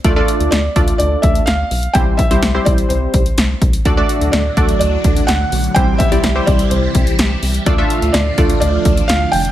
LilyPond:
<<
  \new Staff \with { instrumentName = "Felt piano" } { \time 4/4 \key d \mixolydian \tempo 4 = 126 r4 d''4 d''8 e''8 f''4 | g''8 e''4 d''8 c''4. r8 | r4 d''4 d''4 fis''4 | g''8 e''4 d''8 c''4. r8 |
r4 d''4 d''4 f''8 g''8 | }
  \new Staff \with { instrumentName = "Analog polysynth" } { \time 4/4 \key d \mixolydian <a d' f' a' d''>16 <a d' f' a' d''>8. r8 <a d' f' a' d''>4. r4 | <g c' e' g' c''>8 r16 <g c' e' g' c''>16 r16 <g c' e' g' c''>4. r4 r16 | <a d' fis' a' d''>16 <a d' fis' a' d''>8. r8 <a d' fis' a' d''>4. r4 | <g c' e' g' c''>8 r16 <g c' e' g' d''>16 r16 <g c' e' g' c''>4. r4 r16 |
<a d' f' a' d''>16 <a d' f' a' e''>8. r8 <a d' f' a' d''>4. r4 | }
  \new Staff \with { instrumentName = "String machine" } { \clef bass \time 4/4 \key d \mixolydian r1 | r1 | <a, d fis d' fis'>1 | <c e g e' g'>1 |
<a, d f d' f'>1 | }
  \new Staff \with { instrumentName = "Analog synth bass" } { \clef bass \time 4/4 \key d \mixolydian d,8 r16 d,16 d,8 d,8 d,8 d,8 d,8 b,,8 | c,8 r16 c,16 c,8 c,8 c,8 c,8 c,8 c,8 | d,8 r16 d,16 d,8 d,8 d,8 d,8 d,8 b,,8 | c,8 r16 c,16 c,8 c,8 c,8 c,8 c,8 c,8 |
d,8 r16 d,16 d,8 d,8 d,8 d,8 d,8 f,,8 | }
  \new DrumStaff \with { instrumentName = "Drums" } \drummode { \time 4/4 <hh bd>8 hh16 hh16 <hh sn>8 <hh bd>16 hh16 hh8 <hh bd>16 hh16 <hh sn>8 hho16 hh16 | <hh bd>8 <hh bd>16 hh16 <hh sn>8 <hh bd>16 hh16 hh8 <hh bd>16 hh16 <hh sn>8 <hh bd>16 hh16 | <hh bd>8 hh16 hh16 <hh sn>8 <hh bd>16 hh16 hh8 <hh bd>16 hh16 <hh sn>8 hho16 hh16 | <hh bd>8 <hh bd>16 hh16 <hh sn>8 <hh bd>16 hh16 hh8 <hh bd>16 hh16 <hh sn>8 hho16 hh16 |
<hh bd>8 hh16 hh16 <hh sn>8 <hh bd>16 hh16 hh8 <hh bd>16 hh16 <hh sn>8 hho16 hh16 | }
>>